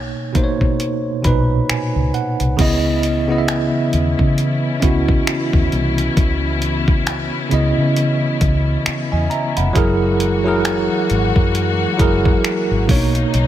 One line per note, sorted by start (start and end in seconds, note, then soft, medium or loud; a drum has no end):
0.00 0.12 B1 loud
0.00 0.33 B2 medium
0.00 0.34 A#3 medium
0.00 0.36 D#4 medium
0.00 0.44 C#5 medium
0.33 1.11 B2 medium
0.33 0.55 B2 medium
0.33 1.12 A#3 medium
0.33 1.12 D#4 medium
0.33 kick medium
0.33 closed hi-hat medium
0.37 0.44 C5 medium
0.44 1.16 C#5 medium
0.61 1.10 B2 medium
0.61 kick medium
0.80 closed hi-hat medium
1.22 1.59 B1 medium
1.22 2.40 A#2 medium
1.22 2.39 B2 medium
1.22 2.41 D#4 medium
1.22 1.66 B5 medium
1.22 kick medium
1.22 closed hi-hat medium
1.27 2.41 B4 medium
1.69 2.11 G#5 medium
1.69 finger snap loud
1.69 muted fingered electric bass stroke soft
1.69 closed hi-hat medium
1.96 2.10 C#2 medium
2.14 2.56 F#5 medium
2.14 closed hi-hat soft
2.40 2.55 C2 medium
2.40 closed hi-hat medium
2.57 3.71 C#2 loud
2.57 3.16 C#3 loud
2.57 9.71 E3 medium
2.57 3.17 B3 medium
2.57 9.71 B3 medium
2.57 9.71 C#4 medium
2.57 9.71 E4 medium
2.57 3.17 E4 medium
2.57 kick loud
2.57 closed hi-hat medium
2.57 crash medium
2.61 3.18 D#5 loud
3.03 closed hi-hat medium
3.27 4.59 C#3 medium
3.27 4.59 B3 medium
3.27 4.60 E4 medium
3.32 3.36 D#5 medium
3.38 4.64 E5 medium
3.48 finger snap loud
3.48 closed hi-hat medium
3.93 4.13 D#2 medium
3.93 closed hi-hat medium
4.19 4.68 C#3 medium
4.19 kick medium
4.38 closed hi-hat medium
4.80 5.17 C#2 medium
4.80 6.34 B3 medium
4.80 6.33 C#4 medium
4.80 6.35 E4 medium
4.80 kick medium
4.80 closed hi-hat medium
4.85 6.36 F#4 medium
5.08 kick loud
5.27 finger snap loud
5.27 closed hi-hat medium
5.53 5.68 D#2 medium
5.53 kick medium
5.72 6.07 C2 medium
5.72 closed hi-hat soft
5.98 closed hi-hat medium
6.17 7.29 C#2 medium
6.17 kick loud
6.17 closed hi-hat medium
6.62 closed hi-hat medium
6.88 kick medium
7.07 finger snap loud
7.07 closed hi-hat medium
7.49 7.72 C#2 medium
7.49 9.02 C#3 medium
7.49 9.03 B3 medium
7.49 9.04 E4 medium
7.49 closed hi-hat medium
7.54 8.87 D#5 medium
7.78 8.26 C#3 medium
7.96 closed hi-hat medium
8.41 8.76 C#2 medium
8.41 kick medium
8.41 closed hi-hat medium
8.86 finger snap loud
8.86 muted fingered electric bass stroke soft
8.86 closed hi-hat medium
9.12 9.27 E2 medium
9.12 9.30 D#5 medium
9.12 9.30 G#5 medium
9.30 9.55 E5 medium
9.30 9.55 A#5 medium
9.30 closed hi-hat soft
9.57 9.71 F1 medium
9.57 10.00 F#5 medium
9.57 9.99 B5 medium
9.57 closed hi-hat medium
9.73 10.87 F#1 medium
9.73 12.86 E3 medium
9.73 10.32 F#3 loud
9.73 12.86 G#3 medium
9.73 13.47 A#3 medium
9.73 10.33 E4 medium
9.73 12.86 F#4 medium
9.73 10.34 G#4 medium
9.73 kick loud
9.73 closed hi-hat medium
9.78 10.34 A#4 loud
10.20 closed hi-hat medium
10.44 11.75 F#3 medium
10.44 11.76 E4 medium
10.44 11.77 G#4 medium
10.48 11.77 A#4 loud
10.65 finger snap loud
10.65 closed hi-hat medium
11.10 11.30 G#1 medium
11.10 closed hi-hat medium
11.36 11.85 F#2 medium
11.36 kick medium
11.55 closed hi-hat medium
11.97 12.34 F#1 medium
11.97 12.88 F#3 medium
11.97 12.88 E4 medium
11.97 12.89 G#4 medium
11.97 kick loud
11.97 closed hi-hat medium
12.01 12.90 A#4 medium
12.25 kick loud
12.44 finger snap loud
12.44 closed hi-hat medium
12.71 12.89 G#1 medium
12.87 13.23 B1 loud
12.87 13.47 B2 medium
12.87 13.47 C#3 medium
12.87 13.47 A#3 medium
12.87 12.97 D4 medium
12.87 13.47 D#4 medium
12.87 kick loud
12.87 closed hi-hat soft
12.87 open hi-hat medium
12.91 13.47 C#5 medium
12.96 13.47 D#4 medium
13.15 closed hi-hat medium
13.34 13.47 B1 loud
13.34 closed hi-hat medium